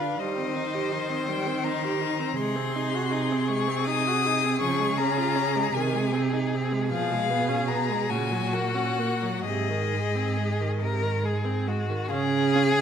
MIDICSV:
0, 0, Header, 1, 5, 480
1, 0, Start_track
1, 0, Key_signature, -5, "major"
1, 0, Tempo, 729040
1, 136, Time_signature, 6, 3, 24, 8
1, 1578, Tempo, 743494
1, 3498, Tempo, 774194
1, 4938, Tempo, 846262
1, 5418, Tempo, 918836
1, 6378, Tempo, 872093
1, 7719, End_track
2, 0, Start_track
2, 0, Title_t, "Violin"
2, 0, Program_c, 0, 40
2, 0, Note_on_c, 0, 77, 61
2, 131, Note_on_c, 0, 75, 58
2, 141, Note_off_c, 0, 77, 0
2, 846, Note_off_c, 0, 75, 0
2, 850, Note_on_c, 0, 79, 59
2, 1081, Note_on_c, 0, 82, 69
2, 1091, Note_off_c, 0, 79, 0
2, 1554, Note_on_c, 0, 84, 64
2, 1563, Note_off_c, 0, 82, 0
2, 2275, Note_on_c, 0, 85, 72
2, 2285, Note_off_c, 0, 84, 0
2, 2513, Note_on_c, 0, 87, 83
2, 2522, Note_off_c, 0, 85, 0
2, 3001, Note_off_c, 0, 87, 0
2, 3005, Note_on_c, 0, 85, 76
2, 3242, Note_on_c, 0, 82, 77
2, 3251, Note_off_c, 0, 85, 0
2, 3724, Note_on_c, 0, 80, 64
2, 3734, Note_off_c, 0, 82, 0
2, 3970, Note_off_c, 0, 80, 0
2, 4449, Note_on_c, 0, 77, 78
2, 4924, Note_on_c, 0, 82, 65
2, 4933, Note_off_c, 0, 77, 0
2, 5166, Note_on_c, 0, 80, 65
2, 5174, Note_off_c, 0, 82, 0
2, 5417, Note_on_c, 0, 78, 67
2, 5425, Note_off_c, 0, 80, 0
2, 5893, Note_off_c, 0, 78, 0
2, 5896, Note_on_c, 0, 75, 67
2, 6604, Note_off_c, 0, 75, 0
2, 7321, Note_on_c, 0, 65, 54
2, 7365, Note_off_c, 0, 65, 0
2, 7567, Note_on_c, 0, 65, 50
2, 7611, Note_off_c, 0, 65, 0
2, 7719, End_track
3, 0, Start_track
3, 0, Title_t, "Violin"
3, 0, Program_c, 1, 40
3, 0, Note_on_c, 1, 71, 43
3, 128, Note_on_c, 1, 72, 49
3, 138, Note_off_c, 1, 71, 0
3, 1565, Note_off_c, 1, 72, 0
3, 1569, Note_on_c, 1, 68, 56
3, 4425, Note_off_c, 1, 68, 0
3, 4446, Note_on_c, 1, 68, 57
3, 5168, Note_on_c, 1, 66, 60
3, 5176, Note_off_c, 1, 68, 0
3, 5896, Note_off_c, 1, 66, 0
3, 5902, Note_on_c, 1, 68, 48
3, 6561, Note_off_c, 1, 68, 0
3, 6616, Note_on_c, 1, 70, 57
3, 6859, Note_on_c, 1, 68, 46
3, 6867, Note_off_c, 1, 70, 0
3, 7096, Note_on_c, 1, 66, 49
3, 7104, Note_off_c, 1, 68, 0
3, 7327, Note_off_c, 1, 66, 0
3, 7330, Note_on_c, 1, 68, 86
3, 7719, Note_off_c, 1, 68, 0
3, 7719, End_track
4, 0, Start_track
4, 0, Title_t, "Viola"
4, 0, Program_c, 2, 41
4, 11, Note_on_c, 2, 62, 40
4, 127, Note_off_c, 2, 62, 0
4, 131, Note_on_c, 2, 55, 41
4, 245, Note_on_c, 2, 60, 43
4, 254, Note_off_c, 2, 55, 0
4, 364, Note_on_c, 2, 63, 48
4, 374, Note_off_c, 2, 60, 0
4, 489, Note_on_c, 2, 67, 42
4, 499, Note_off_c, 2, 63, 0
4, 604, Note_on_c, 2, 63, 41
4, 613, Note_off_c, 2, 67, 0
4, 725, Note_on_c, 2, 60, 37
4, 735, Note_off_c, 2, 63, 0
4, 846, Note_on_c, 2, 55, 40
4, 855, Note_off_c, 2, 60, 0
4, 965, Note_on_c, 2, 60, 42
4, 975, Note_off_c, 2, 55, 0
4, 1088, Note_on_c, 2, 63, 46
4, 1098, Note_off_c, 2, 60, 0
4, 1214, Note_on_c, 2, 67, 39
4, 1223, Note_off_c, 2, 63, 0
4, 1325, Note_on_c, 2, 63, 44
4, 1335, Note_off_c, 2, 67, 0
4, 1444, Note_on_c, 2, 60, 46
4, 1454, Note_off_c, 2, 63, 0
4, 1562, Note_off_c, 2, 60, 0
4, 1566, Note_on_c, 2, 56, 49
4, 1683, Note_on_c, 2, 60, 48
4, 1693, Note_off_c, 2, 56, 0
4, 1807, Note_on_c, 2, 63, 45
4, 1817, Note_off_c, 2, 60, 0
4, 1930, Note_on_c, 2, 66, 47
4, 1940, Note_off_c, 2, 63, 0
4, 2044, Note_on_c, 2, 63, 53
4, 2054, Note_off_c, 2, 66, 0
4, 2173, Note_on_c, 2, 60, 47
4, 2182, Note_off_c, 2, 63, 0
4, 2284, Note_on_c, 2, 56, 48
4, 2294, Note_off_c, 2, 60, 0
4, 2406, Note_on_c, 2, 60, 50
4, 2415, Note_off_c, 2, 56, 0
4, 2529, Note_on_c, 2, 63, 53
4, 2539, Note_off_c, 2, 60, 0
4, 2658, Note_on_c, 2, 66, 48
4, 2668, Note_off_c, 2, 63, 0
4, 2784, Note_on_c, 2, 63, 49
4, 2793, Note_off_c, 2, 66, 0
4, 2903, Note_on_c, 2, 60, 49
4, 2913, Note_off_c, 2, 63, 0
4, 3015, Note_off_c, 2, 60, 0
4, 3019, Note_on_c, 2, 53, 58
4, 3129, Note_on_c, 2, 56, 52
4, 3139, Note_off_c, 2, 53, 0
4, 3254, Note_on_c, 2, 61, 50
4, 3264, Note_off_c, 2, 56, 0
4, 3372, Note_on_c, 2, 65, 56
4, 3381, Note_off_c, 2, 61, 0
4, 3489, Note_on_c, 2, 61, 59
4, 3499, Note_off_c, 2, 65, 0
4, 3616, Note_on_c, 2, 56, 49
4, 3625, Note_off_c, 2, 61, 0
4, 3734, Note_off_c, 2, 56, 0
4, 3740, Note_on_c, 2, 51, 51
4, 3856, Note_on_c, 2, 56, 51
4, 3865, Note_off_c, 2, 51, 0
4, 3971, Note_on_c, 2, 60, 56
4, 3981, Note_off_c, 2, 56, 0
4, 4092, Note_on_c, 2, 63, 46
4, 4101, Note_off_c, 2, 60, 0
4, 4227, Note_on_c, 2, 60, 48
4, 4236, Note_off_c, 2, 63, 0
4, 4337, Note_on_c, 2, 56, 48
4, 4346, Note_off_c, 2, 60, 0
4, 4455, Note_off_c, 2, 56, 0
4, 4460, Note_on_c, 2, 53, 58
4, 4579, Note_on_c, 2, 56, 52
4, 4589, Note_off_c, 2, 53, 0
4, 4695, Note_on_c, 2, 59, 59
4, 4704, Note_off_c, 2, 56, 0
4, 4809, Note_on_c, 2, 61, 51
4, 4818, Note_off_c, 2, 59, 0
4, 4937, Note_on_c, 2, 59, 52
4, 4945, Note_off_c, 2, 61, 0
4, 5052, Note_on_c, 2, 56, 46
4, 5060, Note_off_c, 2, 59, 0
4, 5169, Note_off_c, 2, 56, 0
4, 5172, Note_on_c, 2, 49, 51
4, 5292, Note_on_c, 2, 54, 46
4, 5300, Note_off_c, 2, 49, 0
4, 5414, Note_on_c, 2, 58, 48
4, 5422, Note_off_c, 2, 54, 0
4, 5527, Note_on_c, 2, 61, 44
4, 5534, Note_off_c, 2, 58, 0
4, 5654, Note_on_c, 2, 58, 48
4, 5661, Note_off_c, 2, 61, 0
4, 5777, Note_on_c, 2, 54, 44
4, 5785, Note_off_c, 2, 58, 0
4, 5900, Note_off_c, 2, 54, 0
4, 5911, Note_on_c, 2, 48, 43
4, 6020, Note_on_c, 2, 51, 44
4, 6028, Note_off_c, 2, 48, 0
4, 6148, Note_on_c, 2, 56, 48
4, 6156, Note_off_c, 2, 51, 0
4, 6261, Note_on_c, 2, 60, 44
4, 6269, Note_off_c, 2, 56, 0
4, 6374, Note_on_c, 2, 56, 39
4, 6382, Note_off_c, 2, 60, 0
4, 6499, Note_on_c, 2, 51, 37
4, 6508, Note_off_c, 2, 56, 0
4, 6623, Note_on_c, 2, 48, 44
4, 6631, Note_off_c, 2, 51, 0
4, 6736, Note_on_c, 2, 51, 43
4, 6744, Note_off_c, 2, 48, 0
4, 6848, Note_on_c, 2, 56, 46
4, 6857, Note_off_c, 2, 51, 0
4, 6968, Note_on_c, 2, 60, 39
4, 6977, Note_off_c, 2, 56, 0
4, 7092, Note_on_c, 2, 56, 41
4, 7101, Note_off_c, 2, 60, 0
4, 7213, Note_on_c, 2, 51, 38
4, 7221, Note_off_c, 2, 56, 0
4, 7329, Note_off_c, 2, 51, 0
4, 7333, Note_on_c, 2, 61, 55
4, 7377, Note_off_c, 2, 61, 0
4, 7574, Note_on_c, 2, 61, 55
4, 7618, Note_off_c, 2, 61, 0
4, 7719, End_track
5, 0, Start_track
5, 0, Title_t, "Cello"
5, 0, Program_c, 3, 42
5, 0, Note_on_c, 3, 50, 39
5, 128, Note_off_c, 3, 50, 0
5, 132, Note_on_c, 3, 51, 52
5, 1549, Note_off_c, 3, 51, 0
5, 1574, Note_on_c, 3, 48, 65
5, 2997, Note_off_c, 3, 48, 0
5, 3017, Note_on_c, 3, 49, 67
5, 3716, Note_off_c, 3, 49, 0
5, 3729, Note_on_c, 3, 48, 58
5, 4449, Note_on_c, 3, 47, 65
5, 4458, Note_off_c, 3, 48, 0
5, 5171, Note_on_c, 3, 46, 53
5, 5179, Note_off_c, 3, 47, 0
5, 5895, Note_off_c, 3, 46, 0
5, 5898, Note_on_c, 3, 44, 55
5, 7192, Note_off_c, 3, 44, 0
5, 7331, Note_on_c, 3, 49, 78
5, 7719, Note_off_c, 3, 49, 0
5, 7719, End_track
0, 0, End_of_file